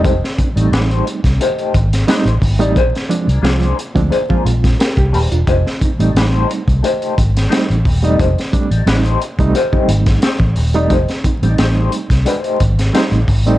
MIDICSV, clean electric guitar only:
0, 0, Header, 1, 3, 480
1, 0, Start_track
1, 0, Tempo, 678733
1, 32, Time_signature, 4, 2, 24, 8
1, 9607, End_track
2, 0, Start_track
2, 0, Title_t, "Clean electric guitar"
2, 0, Program_c, 0, 27
2, 21, Note_on_c, 0, 57, 70
2, 28, Note_on_c, 0, 63, 77
2, 32, Note_on_c, 0, 67, 90
2, 36, Note_on_c, 0, 72, 77
2, 130, Note_off_c, 0, 57, 0
2, 133, Note_off_c, 0, 63, 0
2, 135, Note_off_c, 0, 67, 0
2, 137, Note_off_c, 0, 72, 0
2, 392, Note_on_c, 0, 74, 67
2, 398, Note_on_c, 0, 67, 57
2, 402, Note_on_c, 0, 63, 59
2, 408, Note_on_c, 0, 57, 56
2, 467, Note_off_c, 0, 74, 0
2, 470, Note_off_c, 0, 67, 0
2, 472, Note_off_c, 0, 63, 0
2, 475, Note_off_c, 0, 57, 0
2, 512, Note_on_c, 0, 56, 77
2, 516, Note_on_c, 0, 62, 84
2, 522, Note_on_c, 0, 66, 86
2, 527, Note_on_c, 0, 71, 96
2, 604, Note_off_c, 0, 56, 0
2, 604, Note_on_c, 0, 57, 77
2, 608, Note_off_c, 0, 62, 0
2, 608, Note_on_c, 0, 63, 84
2, 614, Note_off_c, 0, 66, 0
2, 614, Note_on_c, 0, 67, 86
2, 619, Note_off_c, 0, 71, 0
2, 619, Note_on_c, 0, 72, 96
2, 733, Note_off_c, 0, 57, 0
2, 735, Note_off_c, 0, 63, 0
2, 738, Note_off_c, 0, 67, 0
2, 741, Note_off_c, 0, 72, 0
2, 992, Note_on_c, 0, 57, 77
2, 998, Note_on_c, 0, 63, 72
2, 1002, Note_on_c, 0, 67, 89
2, 1006, Note_on_c, 0, 72, 95
2, 1213, Note_off_c, 0, 57, 0
2, 1216, Note_off_c, 0, 63, 0
2, 1218, Note_off_c, 0, 67, 0
2, 1220, Note_off_c, 0, 72, 0
2, 1476, Note_on_c, 0, 57, 88
2, 1480, Note_on_c, 0, 63, 92
2, 1484, Note_on_c, 0, 67, 85
2, 1487, Note_on_c, 0, 72, 87
2, 1621, Note_off_c, 0, 57, 0
2, 1623, Note_off_c, 0, 63, 0
2, 1625, Note_off_c, 0, 67, 0
2, 1627, Note_off_c, 0, 72, 0
2, 1842, Note_on_c, 0, 74, 68
2, 1843, Note_on_c, 0, 67, 62
2, 1848, Note_on_c, 0, 63, 51
2, 1853, Note_on_c, 0, 57, 53
2, 1911, Note_off_c, 0, 67, 0
2, 1911, Note_off_c, 0, 74, 0
2, 1914, Note_off_c, 0, 63, 0
2, 1916, Note_off_c, 0, 57, 0
2, 1951, Note_on_c, 0, 58, 90
2, 1957, Note_on_c, 0, 62, 74
2, 1961, Note_on_c, 0, 72, 94
2, 1963, Note_on_c, 0, 68, 85
2, 2053, Note_off_c, 0, 58, 0
2, 2056, Note_off_c, 0, 62, 0
2, 2058, Note_off_c, 0, 72, 0
2, 2060, Note_off_c, 0, 68, 0
2, 2314, Note_on_c, 0, 74, 66
2, 2319, Note_on_c, 0, 62, 51
2, 2319, Note_on_c, 0, 68, 58
2, 2328, Note_on_c, 0, 58, 46
2, 2387, Note_off_c, 0, 74, 0
2, 2389, Note_off_c, 0, 62, 0
2, 2389, Note_off_c, 0, 68, 0
2, 2394, Note_off_c, 0, 58, 0
2, 2417, Note_on_c, 0, 58, 79
2, 2423, Note_on_c, 0, 62, 94
2, 2426, Note_on_c, 0, 68, 96
2, 2432, Note_on_c, 0, 72, 94
2, 2645, Note_off_c, 0, 58, 0
2, 2648, Note_off_c, 0, 62, 0
2, 2650, Note_off_c, 0, 68, 0
2, 2653, Note_off_c, 0, 72, 0
2, 2901, Note_on_c, 0, 58, 82
2, 2909, Note_on_c, 0, 62, 87
2, 2910, Note_on_c, 0, 68, 105
2, 2913, Note_on_c, 0, 72, 96
2, 3127, Note_off_c, 0, 58, 0
2, 3131, Note_off_c, 0, 62, 0
2, 3132, Note_off_c, 0, 68, 0
2, 3133, Note_off_c, 0, 72, 0
2, 3625, Note_on_c, 0, 58, 73
2, 3629, Note_on_c, 0, 62, 73
2, 3633, Note_on_c, 0, 68, 80
2, 3642, Note_on_c, 0, 72, 72
2, 3751, Note_off_c, 0, 72, 0
2, 3753, Note_off_c, 0, 68, 0
2, 3759, Note_off_c, 0, 62, 0
2, 3776, Note_off_c, 0, 58, 0
2, 3868, Note_on_c, 0, 57, 73
2, 3874, Note_on_c, 0, 63, 86
2, 3878, Note_on_c, 0, 67, 88
2, 3880, Note_on_c, 0, 72, 87
2, 3972, Note_off_c, 0, 57, 0
2, 3975, Note_off_c, 0, 63, 0
2, 3977, Note_off_c, 0, 67, 0
2, 3978, Note_off_c, 0, 72, 0
2, 4247, Note_on_c, 0, 74, 61
2, 4251, Note_on_c, 0, 67, 64
2, 4253, Note_on_c, 0, 63, 58
2, 4258, Note_on_c, 0, 57, 55
2, 4313, Note_off_c, 0, 74, 0
2, 4315, Note_off_c, 0, 67, 0
2, 4316, Note_off_c, 0, 63, 0
2, 4319, Note_off_c, 0, 57, 0
2, 4362, Note_on_c, 0, 56, 88
2, 4364, Note_on_c, 0, 62, 97
2, 4367, Note_on_c, 0, 66, 92
2, 4371, Note_on_c, 0, 71, 94
2, 4454, Note_off_c, 0, 56, 0
2, 4454, Note_on_c, 0, 57, 88
2, 4456, Note_off_c, 0, 62, 0
2, 4456, Note_off_c, 0, 71, 0
2, 4456, Note_on_c, 0, 63, 97
2, 4456, Note_on_c, 0, 72, 94
2, 4459, Note_off_c, 0, 66, 0
2, 4459, Note_on_c, 0, 67, 92
2, 4578, Note_off_c, 0, 57, 0
2, 4579, Note_off_c, 0, 63, 0
2, 4580, Note_off_c, 0, 67, 0
2, 4583, Note_off_c, 0, 72, 0
2, 4827, Note_on_c, 0, 57, 90
2, 4834, Note_on_c, 0, 67, 94
2, 4836, Note_on_c, 0, 63, 80
2, 4844, Note_on_c, 0, 72, 89
2, 5051, Note_off_c, 0, 57, 0
2, 5054, Note_off_c, 0, 67, 0
2, 5055, Note_off_c, 0, 63, 0
2, 5059, Note_off_c, 0, 72, 0
2, 5297, Note_on_c, 0, 57, 81
2, 5306, Note_on_c, 0, 63, 96
2, 5308, Note_on_c, 0, 67, 99
2, 5311, Note_on_c, 0, 72, 106
2, 5407, Note_off_c, 0, 57, 0
2, 5412, Note_off_c, 0, 63, 0
2, 5412, Note_off_c, 0, 67, 0
2, 5414, Note_off_c, 0, 72, 0
2, 5677, Note_on_c, 0, 74, 55
2, 5686, Note_on_c, 0, 67, 48
2, 5690, Note_on_c, 0, 57, 48
2, 5691, Note_on_c, 0, 63, 52
2, 5749, Note_off_c, 0, 74, 0
2, 5753, Note_off_c, 0, 67, 0
2, 5755, Note_off_c, 0, 57, 0
2, 5756, Note_off_c, 0, 63, 0
2, 5788, Note_on_c, 0, 57, 81
2, 5792, Note_on_c, 0, 63, 84
2, 5797, Note_on_c, 0, 67, 89
2, 5803, Note_on_c, 0, 72, 81
2, 5893, Note_off_c, 0, 57, 0
2, 5894, Note_off_c, 0, 63, 0
2, 5897, Note_off_c, 0, 67, 0
2, 5900, Note_off_c, 0, 72, 0
2, 6158, Note_on_c, 0, 74, 68
2, 6164, Note_on_c, 0, 63, 53
2, 6164, Note_on_c, 0, 67, 58
2, 6174, Note_on_c, 0, 57, 48
2, 6230, Note_off_c, 0, 74, 0
2, 6232, Note_off_c, 0, 67, 0
2, 6233, Note_off_c, 0, 63, 0
2, 6238, Note_off_c, 0, 57, 0
2, 6274, Note_on_c, 0, 56, 82
2, 6275, Note_on_c, 0, 62, 94
2, 6279, Note_on_c, 0, 66, 99
2, 6282, Note_on_c, 0, 71, 85
2, 6366, Note_off_c, 0, 56, 0
2, 6366, Note_on_c, 0, 57, 82
2, 6367, Note_off_c, 0, 62, 0
2, 6367, Note_on_c, 0, 63, 94
2, 6371, Note_off_c, 0, 66, 0
2, 6371, Note_on_c, 0, 67, 99
2, 6374, Note_off_c, 0, 71, 0
2, 6374, Note_on_c, 0, 72, 85
2, 6494, Note_off_c, 0, 57, 0
2, 6495, Note_off_c, 0, 63, 0
2, 6497, Note_off_c, 0, 67, 0
2, 6499, Note_off_c, 0, 72, 0
2, 6750, Note_on_c, 0, 57, 89
2, 6754, Note_on_c, 0, 63, 105
2, 6756, Note_on_c, 0, 67, 90
2, 6759, Note_on_c, 0, 72, 93
2, 6973, Note_off_c, 0, 57, 0
2, 6975, Note_off_c, 0, 63, 0
2, 6976, Note_off_c, 0, 67, 0
2, 6977, Note_off_c, 0, 72, 0
2, 7235, Note_on_c, 0, 57, 86
2, 7237, Note_on_c, 0, 63, 86
2, 7244, Note_on_c, 0, 67, 81
2, 7247, Note_on_c, 0, 72, 84
2, 7337, Note_off_c, 0, 57, 0
2, 7338, Note_off_c, 0, 63, 0
2, 7341, Note_off_c, 0, 67, 0
2, 7343, Note_off_c, 0, 72, 0
2, 7609, Note_on_c, 0, 74, 56
2, 7611, Note_on_c, 0, 67, 54
2, 7616, Note_on_c, 0, 63, 52
2, 7618, Note_on_c, 0, 57, 45
2, 7676, Note_off_c, 0, 74, 0
2, 7677, Note_off_c, 0, 67, 0
2, 7679, Note_off_c, 0, 63, 0
2, 7680, Note_off_c, 0, 57, 0
2, 7715, Note_on_c, 0, 57, 79
2, 7719, Note_on_c, 0, 63, 72
2, 7719, Note_on_c, 0, 67, 92
2, 7727, Note_on_c, 0, 72, 76
2, 7817, Note_off_c, 0, 57, 0
2, 7819, Note_off_c, 0, 63, 0
2, 7819, Note_off_c, 0, 67, 0
2, 7823, Note_off_c, 0, 72, 0
2, 8084, Note_on_c, 0, 74, 60
2, 8085, Note_on_c, 0, 67, 54
2, 8091, Note_on_c, 0, 63, 54
2, 8095, Note_on_c, 0, 57, 47
2, 8154, Note_off_c, 0, 67, 0
2, 8154, Note_off_c, 0, 74, 0
2, 8157, Note_off_c, 0, 63, 0
2, 8159, Note_off_c, 0, 57, 0
2, 8191, Note_on_c, 0, 57, 82
2, 8201, Note_on_c, 0, 63, 81
2, 8201, Note_on_c, 0, 67, 91
2, 8206, Note_on_c, 0, 72, 82
2, 8414, Note_off_c, 0, 57, 0
2, 8419, Note_off_c, 0, 63, 0
2, 8419, Note_off_c, 0, 67, 0
2, 8422, Note_off_c, 0, 72, 0
2, 8666, Note_on_c, 0, 56, 82
2, 8671, Note_on_c, 0, 62, 88
2, 8674, Note_on_c, 0, 66, 85
2, 8681, Note_on_c, 0, 71, 102
2, 8758, Note_off_c, 0, 56, 0
2, 8758, Note_on_c, 0, 57, 82
2, 8763, Note_off_c, 0, 62, 0
2, 8763, Note_on_c, 0, 63, 88
2, 8766, Note_off_c, 0, 66, 0
2, 8766, Note_on_c, 0, 67, 85
2, 8773, Note_off_c, 0, 71, 0
2, 8773, Note_on_c, 0, 72, 102
2, 8892, Note_off_c, 0, 57, 0
2, 8894, Note_off_c, 0, 63, 0
2, 8896, Note_off_c, 0, 67, 0
2, 8900, Note_off_c, 0, 72, 0
2, 9143, Note_on_c, 0, 57, 82
2, 9152, Note_on_c, 0, 67, 89
2, 9153, Note_on_c, 0, 63, 76
2, 9159, Note_on_c, 0, 72, 101
2, 9252, Note_off_c, 0, 57, 0
2, 9256, Note_off_c, 0, 67, 0
2, 9257, Note_off_c, 0, 63, 0
2, 9260, Note_off_c, 0, 72, 0
2, 9517, Note_on_c, 0, 74, 54
2, 9527, Note_on_c, 0, 67, 53
2, 9532, Note_on_c, 0, 63, 52
2, 9533, Note_on_c, 0, 57, 46
2, 9591, Note_off_c, 0, 74, 0
2, 9596, Note_off_c, 0, 67, 0
2, 9598, Note_off_c, 0, 63, 0
2, 9599, Note_off_c, 0, 57, 0
2, 9607, End_track
3, 0, Start_track
3, 0, Title_t, "Muted clean electric guitar strokes"
3, 271, Note_on_c, 9, 29, 38
3, 342, Note_off_c, 9, 29, 0
3, 756, Note_on_c, 9, 29, 39
3, 827, Note_off_c, 9, 29, 0
3, 890, Note_on_c, 9, 29, 42
3, 960, Note_off_c, 9, 29, 0
3, 1244, Note_on_c, 9, 29, 54
3, 1315, Note_off_c, 9, 29, 0
3, 1369, Note_on_c, 9, 29, 47
3, 1440, Note_off_c, 9, 29, 0
3, 1718, Note_on_c, 9, 29, 43
3, 1788, Note_off_c, 9, 29, 0
3, 2187, Note_on_c, 9, 29, 46
3, 2257, Note_off_c, 9, 29, 0
3, 2671, Note_on_c, 9, 29, 39
3, 2741, Note_off_c, 9, 29, 0
3, 2793, Note_on_c, 9, 29, 42
3, 2864, Note_off_c, 9, 29, 0
3, 3141, Note_on_c, 9, 29, 37
3, 3212, Note_off_c, 9, 29, 0
3, 3265, Note_on_c, 9, 29, 43
3, 3336, Note_off_c, 9, 29, 0
3, 3517, Note_on_c, 9, 29, 41
3, 3587, Note_off_c, 9, 29, 0
3, 3760, Note_on_c, 9, 29, 41
3, 3830, Note_off_c, 9, 29, 0
3, 4108, Note_on_c, 9, 29, 40
3, 4178, Note_off_c, 9, 29, 0
3, 4591, Note_on_c, 9, 29, 35
3, 4661, Note_off_c, 9, 29, 0
3, 4722, Note_on_c, 9, 29, 39
3, 4793, Note_off_c, 9, 29, 0
3, 5076, Note_on_c, 9, 29, 53
3, 5147, Note_off_c, 9, 29, 0
3, 5194, Note_on_c, 9, 29, 45
3, 5265, Note_off_c, 9, 29, 0
3, 5557, Note_on_c, 9, 29, 47
3, 5627, Note_off_c, 9, 29, 0
3, 6034, Note_on_c, 9, 29, 48
3, 6105, Note_off_c, 9, 29, 0
3, 6519, Note_on_c, 9, 29, 38
3, 6590, Note_off_c, 9, 29, 0
3, 6641, Note_on_c, 9, 29, 45
3, 6712, Note_off_c, 9, 29, 0
3, 6994, Note_on_c, 9, 29, 51
3, 7064, Note_off_c, 9, 29, 0
3, 7126, Note_on_c, 9, 29, 54
3, 7197, Note_off_c, 9, 29, 0
3, 7476, Note_on_c, 9, 29, 45
3, 7547, Note_off_c, 9, 29, 0
3, 7955, Note_on_c, 9, 29, 44
3, 8026, Note_off_c, 9, 29, 0
3, 8444, Note_on_c, 9, 29, 43
3, 8514, Note_off_c, 9, 29, 0
3, 8563, Note_on_c, 9, 29, 47
3, 8633, Note_off_c, 9, 29, 0
3, 8913, Note_on_c, 9, 29, 39
3, 8984, Note_off_c, 9, 29, 0
3, 9037, Note_on_c, 9, 29, 46
3, 9107, Note_off_c, 9, 29, 0
3, 9390, Note_on_c, 9, 29, 44
3, 9460, Note_off_c, 9, 29, 0
3, 9607, End_track
0, 0, End_of_file